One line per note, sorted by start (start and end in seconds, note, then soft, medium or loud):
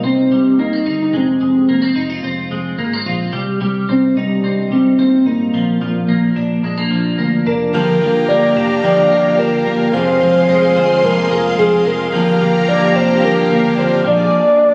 0.00 0.27 C2 medium
0.00 0.31 G3 medium
0.00 0.59 C4 medium
0.00 0.85 D#4 medium
0.05 0.61 C4 loud
0.31 0.54 C2 medium
0.31 1.13 G3 medium
0.58 0.81 D#2 medium
0.58 0.73 A#3 medium
0.58 1.01 D#4 loud
0.73 1.20 C4 soft
0.86 1.09 G1 medium
0.86 1.19 D#4 medium
1.02 1.18 D#4 loud
1.13 1.36 F1 medium
1.13 1.40 G#3 medium
1.13 1.43 C4 loud
1.41 1.64 F1 medium
1.41 2.50 G#3 medium
1.41 1.94 C4 medium
1.68 1.91 F1 medium
1.68 1.82 A#3 medium
1.82 2.23 C4 soft
1.96 2.19 F1 medium
1.96 2.10 D#4 medium
2.10 3.05 F4 medium
2.23 2.46 F1 medium
2.23 2.78 C4 medium
2.50 2.73 F1 medium
2.50 3.32 G#3 medium
2.78 3.01 G#1 loud
2.78 2.93 A#3 medium
2.93 3.40 C4 medium
3.06 3.29 A#1 medium
3.06 3.39 F4 medium
3.33 3.56 C2 medium
3.33 3.60 G3 medium
3.61 3.84 C2 medium
3.61 4.70 G3 medium
3.89 4.12 C2 medium
3.89 4.43 C4 medium
3.89 4.16 C4 loud
4.16 4.39 C2 medium
4.16 4.74 G3 loud
4.16 5.25 D#4 medium
4.43 4.66 C2 medium
4.43 4.98 C4 medium
4.71 4.94 C2 medium
4.71 5.53 G3 medium
4.71 5.00 C4 medium
4.99 5.21 D#2 medium
4.99 5.59 C4 medium
4.99 5.28 C4 loud
5.26 5.49 G#1 medium
5.26 7.19 A#3 medium
5.26 5.59 D#4 medium
5.53 5.76 A#1 loud
5.53 5.81 F3 medium
5.80 6.03 A#1 medium
5.80 6.90 F3 medium
6.08 6.31 A#1 medium
6.08 6.64 A#3 medium
6.36 6.59 A#1 medium
6.36 7.46 D4 medium
6.63 6.86 A#1 medium
6.63 6.77 G#3 medium
6.77 7.17 A#3 medium
6.91 7.13 A#1 medium
6.91 7.74 F3 medium
7.18 7.41 D2 medium
7.18 8.29 A#3 medium
7.46 7.68 F1 medium
7.46 8.56 D4 medium
7.46 7.72 A#4 medium
7.73 7.96 G1 loud
7.73 8.01 G2 medium
7.73 8.01 D3 medium
7.73 8.01 F3 medium
7.73 9.89 A#3 medium
7.73 8.02 A#3 medium
7.73 8.00 D4 medium
7.73 9.89 F4 medium
7.73 9.89 G4 medium
7.73 9.91 G4 medium
7.73 8.30 A#4 loud
7.73 7.99 A#4 medium
7.73 14.01 F5 medium
7.73 9.91 A#5 medium
8.00 8.23 G1 loud
8.00 8.84 F3 medium
8.00 8.27 F3 soft
8.00 8.27 A#3 soft
8.00 8.28 D4 medium
8.00 8.28 A#4 medium
8.28 8.51 G1 medium
8.28 8.56 F3 medium
8.28 8.56 A#3 medium
8.28 9.10 A#3 medium
8.28 8.55 D4 medium
8.28 8.53 A#4 medium
8.28 8.83 D5 loud
8.55 8.78 F1 medium
8.55 8.82 F3 soft
8.55 8.82 A#3 soft
8.55 8.83 D4 soft
8.55 9.37 D4 medium
8.55 8.83 A#4 medium
8.82 9.06 G1 medium
8.82 9.10 G2 medium
8.82 9.10 D3 medium
8.82 9.11 F3 medium
8.82 9.93 F3 medium
8.82 9.11 A#3 medium
8.82 9.10 D4 medium
8.82 9.09 A#4 medium
8.82 9.40 D5 loud
9.10 9.33 G1 medium
9.10 9.37 F3 soft
9.10 9.64 A#3 medium
9.10 9.38 A#3 medium
9.10 9.38 D4 medium
9.10 9.38 A#4 medium
9.38 9.61 G1 medium
9.38 9.66 F3 medium
9.38 9.66 A#3 medium
9.38 9.99 D4 medium
9.38 9.65 D4 medium
9.38 9.96 A#4 loud
9.38 9.63 A#4 medium
9.64 9.89 G1 loud
9.64 9.92 F3 soft
9.64 9.98 A#3 medium
9.64 9.93 A#3 soft
9.64 9.93 D4 soft
9.64 9.93 A#4 medium
9.92 10.16 F1 loud
9.92 10.20 F2 medium
9.92 10.20 C3 medium
9.92 10.20 F3 medium
9.92 10.21 F3 medium
9.92 10.21 G#3 medium
9.92 12.08 C4 medium
9.92 10.20 C4 medium
9.92 12.08 F4 medium
9.92 12.09 G#4 medium
9.92 12.11 G#4 medium
9.92 10.18 G#4 loud
9.92 10.48 C5 loud
9.92 12.11 C6 medium
10.19 10.43 F1 loud
10.19 11.04 F3 medium
10.19 10.46 F3 soft
10.19 10.47 G#3 soft
10.19 10.48 C4 soft
10.19 10.47 G#4 medium
10.47 10.71 F1 loud
10.47 10.75 F3 medium
10.47 10.76 G#3 medium
10.47 11.30 G#3 medium
10.47 10.75 C4 medium
10.47 10.74 G#4 medium
10.47 11.06 C5 loud
10.75 10.99 G1 medium
10.75 11.03 F3 soft
10.75 11.03 G#3 soft
10.75 11.03 C4 soft
10.75 11.57 C4 medium
10.75 11.03 G#4 medium
11.03 11.26 F1 loud
11.03 11.30 F2 medium
11.03 11.30 C3 medium
11.03 11.31 F3 medium
11.03 12.12 F3 medium
11.03 11.31 G#3 medium
11.03 11.29 C4 medium
11.03 11.28 G#4 medium
11.03 11.60 A#4 loud
11.29 11.53 F1 medium
11.29 11.56 F3 soft
11.29 11.84 G#3 medium
11.29 11.57 G#3 medium
11.29 11.58 C4 medium
11.29 11.57 G#4 medium
11.57 11.80 F1 loud
11.57 11.85 F3 medium
11.57 11.85 G#3 medium
11.57 12.19 C4 medium
11.57 11.85 C4 medium
11.57 11.88 G#4 loud
11.57 11.83 G#4 medium
11.85 12.08 F1 loud
11.85 12.13 F3 soft
11.85 12.18 G#3 medium
11.85 12.14 G#3 soft
11.85 12.13 C4 soft
11.85 12.12 G#4 medium
11.85 12.13 A#4 medium
12.12 12.35 G1 medium
12.12 12.41 G2 medium
12.12 12.41 D3 medium
12.12 12.40 F3 medium
12.12 12.41 F3 medium
12.12 14.01 A#3 medium
12.12 12.40 A#3 medium
12.12 12.38 D4 loud
12.12 14.01 F4 medium
12.12 14.03 G4 medium
12.12 14.01 G4 medium
12.12 12.70 A#4 loud
12.12 14.30 A#5 medium
12.39 12.63 G1 medium
12.39 13.23 F3 medium
12.39 12.68 A#3 medium
12.39 12.67 D4 medium
12.66 12.91 G1 loud
12.66 12.95 D3 medium
12.66 12.95 F3 medium
12.66 13.50 A#3 medium
12.66 12.95 A#3 medium
12.66 12.93 D4 medium
12.66 12.97 D5 loud
12.94 13.18 F1 medium
12.94 13.21 F3 soft
12.94 13.22 A#3 medium
12.94 13.22 D4 medium
12.94 13.77 D4 medium
12.94 13.26 C5 loud
13.22 13.45 G1 loud
13.22 13.50 G2 medium
13.22 13.50 D3 medium
13.22 13.50 F3 medium
13.22 14.04 F3 medium
13.22 13.49 A#3 medium
13.22 13.48 D4 medium
13.22 13.79 A#4 loud
13.49 13.72 G1 medium
13.49 13.78 F3 medium
13.49 13.78 A#3 medium
13.49 14.74 A#3 medium
13.49 13.77 D4 medium
13.77 14.00 G1 loud
13.77 14.05 D3 medium
13.77 14.06 F3 medium
13.77 14.06 A#3 medium
13.77 14.74 D4 medium
13.77 14.03 D4 medium
13.77 14.04 C5 medium
14.04 14.27 A#1 loud
14.04 14.38 F3 medium
14.04 14.34 F3 medium
14.04 14.33 G#3 medium
14.04 14.32 D4 medium
14.04 14.32 G#4 medium
14.04 14.32 D5 medium
14.04 14.74 D5 medium